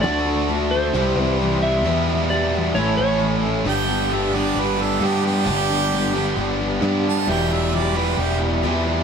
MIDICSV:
0, 0, Header, 1, 7, 480
1, 0, Start_track
1, 0, Key_signature, 1, "major"
1, 0, Tempo, 452489
1, 41, Time_signature, 4, 2, 24, 8
1, 9583, End_track
2, 0, Start_track
2, 0, Title_t, "Harmonica"
2, 0, Program_c, 0, 22
2, 3911, Note_on_c, 0, 79, 93
2, 4389, Note_on_c, 0, 76, 77
2, 4405, Note_off_c, 0, 79, 0
2, 4613, Note_on_c, 0, 74, 86
2, 4628, Note_off_c, 0, 76, 0
2, 4879, Note_on_c, 0, 71, 81
2, 4895, Note_off_c, 0, 74, 0
2, 5106, Note_on_c, 0, 69, 86
2, 5122, Note_off_c, 0, 71, 0
2, 5349, Note_on_c, 0, 67, 84
2, 5365, Note_off_c, 0, 69, 0
2, 5568, Note_off_c, 0, 67, 0
2, 5580, Note_on_c, 0, 67, 114
2, 6970, Note_off_c, 0, 67, 0
2, 7517, Note_on_c, 0, 81, 101
2, 7738, Note_on_c, 0, 79, 89
2, 7754, Note_off_c, 0, 81, 0
2, 7993, Note_on_c, 0, 76, 79
2, 8009, Note_off_c, 0, 79, 0
2, 8227, Note_on_c, 0, 74, 80
2, 8243, Note_off_c, 0, 76, 0
2, 8463, Note_on_c, 0, 71, 87
2, 8479, Note_off_c, 0, 74, 0
2, 8687, Note_on_c, 0, 67, 91
2, 8703, Note_off_c, 0, 71, 0
2, 8918, Note_off_c, 0, 67, 0
2, 9583, End_track
3, 0, Start_track
3, 0, Title_t, "Electric slide guitar"
3, 0, Program_c, 1, 29
3, 17, Note_on_c, 1, 74, 114
3, 749, Note_off_c, 1, 74, 0
3, 753, Note_on_c, 1, 72, 103
3, 1231, Note_off_c, 1, 72, 0
3, 1231, Note_on_c, 1, 71, 103
3, 1434, Note_off_c, 1, 71, 0
3, 1724, Note_on_c, 1, 76, 105
3, 2441, Note_on_c, 1, 74, 89
3, 2463, Note_off_c, 1, 76, 0
3, 2911, Note_off_c, 1, 74, 0
3, 2915, Note_on_c, 1, 73, 87
3, 3141, Note_off_c, 1, 73, 0
3, 3154, Note_on_c, 1, 73, 83
3, 3603, Note_off_c, 1, 73, 0
3, 9583, End_track
4, 0, Start_track
4, 0, Title_t, "String section"
4, 0, Program_c, 2, 48
4, 30, Note_on_c, 2, 66, 72
4, 33, Note_on_c, 2, 62, 72
4, 33, Note_on_c, 2, 69, 74
4, 35, Note_on_c, 2, 74, 78
4, 985, Note_off_c, 2, 66, 0
4, 987, Note_off_c, 2, 62, 0
4, 987, Note_off_c, 2, 69, 0
4, 988, Note_off_c, 2, 74, 0
4, 1002, Note_on_c, 2, 64, 72
4, 1006, Note_on_c, 2, 60, 81
4, 1007, Note_on_c, 2, 67, 79
4, 1012, Note_on_c, 2, 72, 75
4, 1951, Note_off_c, 2, 64, 0
4, 1953, Note_off_c, 2, 60, 0
4, 1954, Note_off_c, 2, 67, 0
4, 1956, Note_off_c, 2, 72, 0
4, 1957, Note_on_c, 2, 59, 67
4, 1963, Note_on_c, 2, 64, 79
4, 1966, Note_on_c, 2, 71, 76
4, 1970, Note_on_c, 2, 67, 66
4, 2896, Note_off_c, 2, 64, 0
4, 2909, Note_off_c, 2, 59, 0
4, 2909, Note_on_c, 2, 64, 81
4, 2910, Note_on_c, 2, 61, 79
4, 2913, Note_off_c, 2, 71, 0
4, 2915, Note_off_c, 2, 67, 0
4, 2916, Note_on_c, 2, 73, 72
4, 2918, Note_on_c, 2, 69, 78
4, 3865, Note_off_c, 2, 61, 0
4, 3865, Note_off_c, 2, 64, 0
4, 3869, Note_off_c, 2, 69, 0
4, 3869, Note_off_c, 2, 73, 0
4, 3869, Note_on_c, 2, 67, 64
4, 3872, Note_on_c, 2, 71, 73
4, 3875, Note_on_c, 2, 59, 70
4, 3881, Note_on_c, 2, 62, 72
4, 7680, Note_off_c, 2, 67, 0
4, 7681, Note_off_c, 2, 71, 0
4, 7683, Note_off_c, 2, 59, 0
4, 7685, Note_off_c, 2, 62, 0
4, 7713, Note_on_c, 2, 64, 78
4, 7715, Note_on_c, 2, 67, 69
4, 7715, Note_on_c, 2, 71, 75
4, 7718, Note_on_c, 2, 59, 79
4, 9583, Note_off_c, 2, 59, 0
4, 9583, Note_off_c, 2, 64, 0
4, 9583, Note_off_c, 2, 67, 0
4, 9583, Note_off_c, 2, 71, 0
4, 9583, End_track
5, 0, Start_track
5, 0, Title_t, "Steel-string acoustic guitar"
5, 0, Program_c, 3, 25
5, 27, Note_on_c, 3, 50, 76
5, 29, Note_on_c, 3, 57, 87
5, 38, Note_on_c, 3, 62, 87
5, 48, Note_on_c, 3, 66, 87
5, 251, Note_off_c, 3, 66, 0
5, 264, Note_on_c, 3, 66, 57
5, 271, Note_off_c, 3, 62, 0
5, 274, Note_off_c, 3, 50, 0
5, 275, Note_off_c, 3, 57, 0
5, 283, Note_on_c, 3, 62, 49
5, 299, Note_on_c, 3, 57, 49
5, 503, Note_off_c, 3, 57, 0
5, 503, Note_on_c, 3, 50, 61
5, 512, Note_off_c, 3, 66, 0
5, 515, Note_on_c, 3, 57, 65
5, 516, Note_off_c, 3, 62, 0
5, 528, Note_on_c, 3, 62, 60
5, 537, Note_on_c, 3, 66, 81
5, 746, Note_off_c, 3, 66, 0
5, 752, Note_off_c, 3, 50, 0
5, 758, Note_off_c, 3, 57, 0
5, 758, Note_on_c, 3, 66, 56
5, 762, Note_off_c, 3, 62, 0
5, 774, Note_on_c, 3, 62, 55
5, 787, Note_on_c, 3, 57, 55
5, 999, Note_off_c, 3, 66, 0
5, 999, Note_on_c, 3, 48, 75
5, 1002, Note_on_c, 3, 52, 85
5, 1007, Note_off_c, 3, 57, 0
5, 1007, Note_off_c, 3, 62, 0
5, 1011, Note_on_c, 3, 55, 94
5, 1015, Note_on_c, 3, 60, 96
5, 1019, Note_on_c, 3, 64, 95
5, 1227, Note_off_c, 3, 64, 0
5, 1239, Note_off_c, 3, 48, 0
5, 1240, Note_on_c, 3, 64, 54
5, 1241, Note_off_c, 3, 52, 0
5, 1244, Note_off_c, 3, 60, 0
5, 1246, Note_off_c, 3, 55, 0
5, 1257, Note_on_c, 3, 60, 52
5, 1270, Note_on_c, 3, 55, 43
5, 1480, Note_off_c, 3, 64, 0
5, 1489, Note_off_c, 3, 55, 0
5, 1489, Note_off_c, 3, 60, 0
5, 1490, Note_on_c, 3, 52, 67
5, 1501, Note_on_c, 3, 55, 75
5, 1507, Note_on_c, 3, 60, 67
5, 1520, Note_on_c, 3, 64, 78
5, 1707, Note_off_c, 3, 64, 0
5, 1719, Note_on_c, 3, 64, 60
5, 1725, Note_off_c, 3, 52, 0
5, 1730, Note_off_c, 3, 60, 0
5, 1731, Note_off_c, 3, 55, 0
5, 1742, Note_on_c, 3, 60, 51
5, 1752, Note_on_c, 3, 55, 48
5, 1959, Note_off_c, 3, 55, 0
5, 1959, Note_on_c, 3, 40, 84
5, 1960, Note_off_c, 3, 64, 0
5, 1963, Note_on_c, 3, 47, 79
5, 1970, Note_on_c, 3, 52, 69
5, 1971, Note_off_c, 3, 60, 0
5, 1971, Note_on_c, 3, 55, 70
5, 1975, Note_on_c, 3, 64, 83
5, 1981, Note_on_c, 3, 59, 83
5, 2191, Note_off_c, 3, 64, 0
5, 2199, Note_off_c, 3, 40, 0
5, 2201, Note_off_c, 3, 47, 0
5, 2203, Note_off_c, 3, 59, 0
5, 2204, Note_on_c, 3, 64, 65
5, 2205, Note_off_c, 3, 52, 0
5, 2206, Note_off_c, 3, 55, 0
5, 2216, Note_on_c, 3, 59, 50
5, 2228, Note_on_c, 3, 55, 48
5, 2241, Note_on_c, 3, 52, 44
5, 2428, Note_off_c, 3, 52, 0
5, 2435, Note_off_c, 3, 55, 0
5, 2441, Note_on_c, 3, 52, 63
5, 2442, Note_off_c, 3, 64, 0
5, 2448, Note_off_c, 3, 59, 0
5, 2448, Note_on_c, 3, 55, 74
5, 2461, Note_on_c, 3, 59, 67
5, 2467, Note_on_c, 3, 64, 73
5, 2674, Note_off_c, 3, 64, 0
5, 2680, Note_off_c, 3, 52, 0
5, 2684, Note_off_c, 3, 55, 0
5, 2687, Note_on_c, 3, 64, 60
5, 2690, Note_off_c, 3, 59, 0
5, 2703, Note_on_c, 3, 59, 57
5, 2714, Note_on_c, 3, 55, 55
5, 2723, Note_on_c, 3, 52, 44
5, 2913, Note_off_c, 3, 52, 0
5, 2922, Note_on_c, 3, 45, 79
5, 2923, Note_off_c, 3, 64, 0
5, 2926, Note_on_c, 3, 52, 83
5, 2927, Note_off_c, 3, 55, 0
5, 2927, Note_off_c, 3, 59, 0
5, 2931, Note_on_c, 3, 57, 74
5, 2931, Note_on_c, 3, 61, 83
5, 2936, Note_on_c, 3, 64, 87
5, 3138, Note_off_c, 3, 64, 0
5, 3151, Note_on_c, 3, 64, 52
5, 3152, Note_off_c, 3, 61, 0
5, 3161, Note_off_c, 3, 45, 0
5, 3163, Note_off_c, 3, 52, 0
5, 3165, Note_off_c, 3, 57, 0
5, 3165, Note_on_c, 3, 61, 43
5, 3180, Note_on_c, 3, 57, 43
5, 3387, Note_off_c, 3, 57, 0
5, 3390, Note_on_c, 3, 52, 66
5, 3395, Note_off_c, 3, 64, 0
5, 3399, Note_off_c, 3, 61, 0
5, 3400, Note_on_c, 3, 57, 70
5, 3412, Note_on_c, 3, 61, 62
5, 3420, Note_on_c, 3, 64, 64
5, 3629, Note_off_c, 3, 64, 0
5, 3635, Note_off_c, 3, 52, 0
5, 3640, Note_off_c, 3, 57, 0
5, 3642, Note_on_c, 3, 64, 53
5, 3646, Note_off_c, 3, 61, 0
5, 3658, Note_on_c, 3, 61, 50
5, 3672, Note_on_c, 3, 57, 43
5, 3870, Note_on_c, 3, 43, 70
5, 3876, Note_on_c, 3, 50, 68
5, 3880, Note_off_c, 3, 57, 0
5, 3881, Note_off_c, 3, 64, 0
5, 3883, Note_on_c, 3, 55, 69
5, 3884, Note_on_c, 3, 59, 72
5, 3889, Note_off_c, 3, 61, 0
5, 3890, Note_on_c, 3, 67, 74
5, 3893, Note_on_c, 3, 62, 71
5, 4109, Note_off_c, 3, 67, 0
5, 4115, Note_off_c, 3, 43, 0
5, 4118, Note_off_c, 3, 50, 0
5, 4121, Note_off_c, 3, 62, 0
5, 4122, Note_off_c, 3, 55, 0
5, 4122, Note_off_c, 3, 59, 0
5, 4122, Note_on_c, 3, 67, 58
5, 4133, Note_on_c, 3, 62, 49
5, 4144, Note_on_c, 3, 59, 46
5, 4155, Note_on_c, 3, 55, 40
5, 4351, Note_off_c, 3, 55, 0
5, 4357, Note_on_c, 3, 43, 69
5, 4361, Note_off_c, 3, 59, 0
5, 4361, Note_off_c, 3, 67, 0
5, 4363, Note_on_c, 3, 50, 80
5, 4364, Note_on_c, 3, 55, 78
5, 4367, Note_off_c, 3, 62, 0
5, 4374, Note_on_c, 3, 59, 82
5, 4380, Note_on_c, 3, 62, 90
5, 4380, Note_on_c, 3, 67, 85
5, 4574, Note_off_c, 3, 67, 0
5, 4587, Note_on_c, 3, 67, 59
5, 4594, Note_off_c, 3, 62, 0
5, 4598, Note_off_c, 3, 59, 0
5, 4599, Note_off_c, 3, 43, 0
5, 4602, Note_off_c, 3, 50, 0
5, 4602, Note_off_c, 3, 55, 0
5, 4606, Note_on_c, 3, 62, 51
5, 4611, Note_on_c, 3, 59, 49
5, 4624, Note_on_c, 3, 55, 45
5, 4827, Note_off_c, 3, 55, 0
5, 4834, Note_off_c, 3, 67, 0
5, 4839, Note_off_c, 3, 59, 0
5, 4839, Note_on_c, 3, 55, 56
5, 4844, Note_off_c, 3, 62, 0
5, 4851, Note_on_c, 3, 59, 60
5, 4862, Note_on_c, 3, 62, 65
5, 4864, Note_on_c, 3, 67, 68
5, 5054, Note_off_c, 3, 67, 0
5, 5067, Note_on_c, 3, 67, 55
5, 5068, Note_off_c, 3, 62, 0
5, 5072, Note_off_c, 3, 59, 0
5, 5080, Note_off_c, 3, 55, 0
5, 5081, Note_on_c, 3, 62, 46
5, 5085, Note_on_c, 3, 59, 49
5, 5095, Note_on_c, 3, 55, 42
5, 5310, Note_off_c, 3, 55, 0
5, 5312, Note_off_c, 3, 59, 0
5, 5312, Note_on_c, 3, 43, 75
5, 5314, Note_off_c, 3, 67, 0
5, 5318, Note_on_c, 3, 50, 71
5, 5321, Note_off_c, 3, 62, 0
5, 5322, Note_on_c, 3, 55, 80
5, 5325, Note_on_c, 3, 59, 79
5, 5333, Note_on_c, 3, 67, 76
5, 5335, Note_on_c, 3, 62, 76
5, 5551, Note_off_c, 3, 67, 0
5, 5557, Note_off_c, 3, 43, 0
5, 5558, Note_off_c, 3, 62, 0
5, 5560, Note_off_c, 3, 50, 0
5, 5562, Note_off_c, 3, 55, 0
5, 5563, Note_off_c, 3, 59, 0
5, 5564, Note_on_c, 3, 67, 58
5, 5571, Note_on_c, 3, 62, 46
5, 5584, Note_on_c, 3, 59, 46
5, 5585, Note_on_c, 3, 55, 46
5, 5792, Note_off_c, 3, 55, 0
5, 5792, Note_on_c, 3, 43, 72
5, 5796, Note_off_c, 3, 59, 0
5, 5799, Note_off_c, 3, 67, 0
5, 5801, Note_off_c, 3, 62, 0
5, 5804, Note_on_c, 3, 50, 72
5, 5805, Note_on_c, 3, 55, 79
5, 5809, Note_on_c, 3, 59, 73
5, 5811, Note_on_c, 3, 67, 88
5, 5814, Note_on_c, 3, 62, 78
5, 6031, Note_off_c, 3, 67, 0
5, 6037, Note_off_c, 3, 43, 0
5, 6039, Note_off_c, 3, 62, 0
5, 6043, Note_off_c, 3, 50, 0
5, 6044, Note_off_c, 3, 55, 0
5, 6044, Note_on_c, 3, 67, 51
5, 6046, Note_off_c, 3, 59, 0
5, 6052, Note_on_c, 3, 62, 57
5, 6062, Note_on_c, 3, 59, 51
5, 6069, Note_on_c, 3, 55, 42
5, 6280, Note_off_c, 3, 55, 0
5, 6283, Note_off_c, 3, 67, 0
5, 6284, Note_on_c, 3, 43, 89
5, 6286, Note_off_c, 3, 59, 0
5, 6286, Note_on_c, 3, 50, 89
5, 6287, Note_off_c, 3, 62, 0
5, 6293, Note_on_c, 3, 55, 91
5, 6298, Note_on_c, 3, 59, 99
5, 6298, Note_on_c, 3, 62, 88
5, 6302, Note_on_c, 3, 67, 100
5, 6494, Note_off_c, 3, 67, 0
5, 6507, Note_on_c, 3, 67, 65
5, 6510, Note_off_c, 3, 62, 0
5, 6523, Note_off_c, 3, 59, 0
5, 6523, Note_on_c, 3, 62, 54
5, 6524, Note_off_c, 3, 43, 0
5, 6524, Note_off_c, 3, 50, 0
5, 6528, Note_off_c, 3, 55, 0
5, 6536, Note_on_c, 3, 59, 54
5, 6542, Note_on_c, 3, 55, 55
5, 6728, Note_off_c, 3, 55, 0
5, 6741, Note_on_c, 3, 55, 70
5, 6742, Note_off_c, 3, 59, 0
5, 6749, Note_off_c, 3, 62, 0
5, 6755, Note_off_c, 3, 67, 0
5, 6755, Note_on_c, 3, 59, 68
5, 6762, Note_on_c, 3, 62, 78
5, 6768, Note_on_c, 3, 67, 75
5, 6979, Note_off_c, 3, 67, 0
5, 6992, Note_off_c, 3, 55, 0
5, 6992, Note_off_c, 3, 62, 0
5, 6992, Note_on_c, 3, 67, 58
5, 6999, Note_off_c, 3, 59, 0
5, 7005, Note_on_c, 3, 62, 56
5, 7010, Note_on_c, 3, 59, 50
5, 7022, Note_on_c, 3, 55, 46
5, 7232, Note_off_c, 3, 55, 0
5, 7233, Note_off_c, 3, 59, 0
5, 7233, Note_on_c, 3, 43, 88
5, 7237, Note_on_c, 3, 50, 85
5, 7238, Note_off_c, 3, 62, 0
5, 7238, Note_off_c, 3, 67, 0
5, 7245, Note_on_c, 3, 55, 81
5, 7246, Note_on_c, 3, 59, 93
5, 7250, Note_on_c, 3, 62, 94
5, 7253, Note_on_c, 3, 67, 85
5, 7463, Note_off_c, 3, 67, 0
5, 7476, Note_on_c, 3, 67, 57
5, 7478, Note_off_c, 3, 43, 0
5, 7480, Note_off_c, 3, 50, 0
5, 7484, Note_off_c, 3, 55, 0
5, 7484, Note_off_c, 3, 62, 0
5, 7485, Note_off_c, 3, 59, 0
5, 7497, Note_on_c, 3, 62, 54
5, 7501, Note_on_c, 3, 59, 51
5, 7511, Note_on_c, 3, 55, 46
5, 7712, Note_on_c, 3, 40, 68
5, 7715, Note_off_c, 3, 55, 0
5, 7715, Note_on_c, 3, 47, 70
5, 7720, Note_off_c, 3, 67, 0
5, 7723, Note_off_c, 3, 59, 0
5, 7723, Note_on_c, 3, 52, 81
5, 7725, Note_off_c, 3, 62, 0
5, 7727, Note_on_c, 3, 55, 70
5, 7729, Note_on_c, 3, 64, 77
5, 7736, Note_on_c, 3, 67, 78
5, 7953, Note_off_c, 3, 67, 0
5, 7958, Note_off_c, 3, 40, 0
5, 7959, Note_off_c, 3, 47, 0
5, 7964, Note_off_c, 3, 52, 0
5, 7966, Note_off_c, 3, 55, 0
5, 7966, Note_off_c, 3, 64, 0
5, 7966, Note_on_c, 3, 67, 51
5, 7981, Note_on_c, 3, 64, 52
5, 7992, Note_on_c, 3, 55, 49
5, 7993, Note_on_c, 3, 52, 44
5, 8191, Note_off_c, 3, 52, 0
5, 8193, Note_off_c, 3, 55, 0
5, 8194, Note_on_c, 3, 47, 83
5, 8197, Note_on_c, 3, 40, 80
5, 8199, Note_off_c, 3, 64, 0
5, 8199, Note_off_c, 3, 67, 0
5, 8203, Note_on_c, 3, 52, 80
5, 8206, Note_on_c, 3, 55, 87
5, 8211, Note_on_c, 3, 64, 86
5, 8212, Note_on_c, 3, 67, 83
5, 8436, Note_off_c, 3, 67, 0
5, 8439, Note_off_c, 3, 47, 0
5, 8440, Note_off_c, 3, 40, 0
5, 8444, Note_off_c, 3, 52, 0
5, 8444, Note_off_c, 3, 64, 0
5, 8445, Note_off_c, 3, 55, 0
5, 8449, Note_on_c, 3, 67, 58
5, 8457, Note_on_c, 3, 64, 55
5, 8462, Note_on_c, 3, 55, 54
5, 8476, Note_on_c, 3, 52, 45
5, 8656, Note_off_c, 3, 52, 0
5, 8662, Note_off_c, 3, 55, 0
5, 8669, Note_on_c, 3, 52, 56
5, 8673, Note_off_c, 3, 64, 0
5, 8675, Note_on_c, 3, 55, 65
5, 8685, Note_on_c, 3, 64, 65
5, 8686, Note_off_c, 3, 67, 0
5, 8701, Note_on_c, 3, 67, 69
5, 8889, Note_off_c, 3, 67, 0
5, 8898, Note_off_c, 3, 64, 0
5, 8902, Note_on_c, 3, 67, 53
5, 8911, Note_on_c, 3, 64, 47
5, 8913, Note_off_c, 3, 55, 0
5, 8916, Note_off_c, 3, 52, 0
5, 8926, Note_on_c, 3, 55, 48
5, 8933, Note_on_c, 3, 52, 41
5, 9151, Note_off_c, 3, 52, 0
5, 9152, Note_off_c, 3, 55, 0
5, 9153, Note_off_c, 3, 67, 0
5, 9156, Note_on_c, 3, 40, 97
5, 9157, Note_off_c, 3, 64, 0
5, 9162, Note_on_c, 3, 47, 84
5, 9164, Note_on_c, 3, 52, 88
5, 9164, Note_on_c, 3, 55, 96
5, 9171, Note_on_c, 3, 64, 103
5, 9178, Note_on_c, 3, 67, 102
5, 9380, Note_off_c, 3, 67, 0
5, 9389, Note_off_c, 3, 64, 0
5, 9393, Note_on_c, 3, 67, 60
5, 9398, Note_off_c, 3, 55, 0
5, 9400, Note_off_c, 3, 40, 0
5, 9401, Note_on_c, 3, 64, 62
5, 9403, Note_off_c, 3, 47, 0
5, 9404, Note_off_c, 3, 52, 0
5, 9411, Note_on_c, 3, 55, 62
5, 9422, Note_on_c, 3, 52, 50
5, 9583, Note_off_c, 3, 52, 0
5, 9583, Note_off_c, 3, 55, 0
5, 9583, Note_off_c, 3, 64, 0
5, 9583, Note_off_c, 3, 67, 0
5, 9583, End_track
6, 0, Start_track
6, 0, Title_t, "Overdriven electric guitar"
6, 0, Program_c, 4, 29
6, 4622, Note_on_c, 4, 50, 72
6, 4633, Note_on_c, 4, 43, 67
6, 5302, Note_off_c, 4, 43, 0
6, 5311, Note_off_c, 4, 50, 0
6, 6534, Note_on_c, 4, 50, 75
6, 6539, Note_on_c, 4, 43, 70
6, 7216, Note_off_c, 4, 43, 0
6, 7223, Note_off_c, 4, 50, 0
6, 8455, Note_on_c, 4, 47, 80
6, 8465, Note_on_c, 4, 40, 79
6, 9151, Note_off_c, 4, 40, 0
6, 9152, Note_off_c, 4, 47, 0
6, 9583, End_track
7, 0, Start_track
7, 0, Title_t, "Picked electric bass"
7, 0, Program_c, 5, 34
7, 40, Note_on_c, 5, 38, 107
7, 958, Note_off_c, 5, 38, 0
7, 992, Note_on_c, 5, 36, 90
7, 1221, Note_off_c, 5, 36, 0
7, 1226, Note_on_c, 5, 36, 100
7, 1951, Note_off_c, 5, 36, 0
7, 1951, Note_on_c, 5, 40, 110
7, 2873, Note_off_c, 5, 40, 0
7, 2921, Note_on_c, 5, 33, 92
7, 3145, Note_off_c, 5, 33, 0
7, 3164, Note_on_c, 5, 33, 94
7, 3840, Note_off_c, 5, 33, 0
7, 3867, Note_on_c, 5, 31, 87
7, 4792, Note_off_c, 5, 31, 0
7, 4831, Note_on_c, 5, 31, 88
7, 5285, Note_off_c, 5, 31, 0
7, 5306, Note_on_c, 5, 43, 90
7, 5795, Note_on_c, 5, 31, 99
7, 5811, Note_off_c, 5, 43, 0
7, 6717, Note_off_c, 5, 31, 0
7, 6756, Note_on_c, 5, 31, 89
7, 7209, Note_off_c, 5, 31, 0
7, 7229, Note_on_c, 5, 43, 87
7, 7720, Note_on_c, 5, 28, 108
7, 7735, Note_off_c, 5, 43, 0
7, 8639, Note_off_c, 5, 28, 0
7, 8668, Note_on_c, 5, 28, 98
7, 9124, Note_off_c, 5, 28, 0
7, 9162, Note_on_c, 5, 40, 84
7, 9583, Note_off_c, 5, 40, 0
7, 9583, End_track
0, 0, End_of_file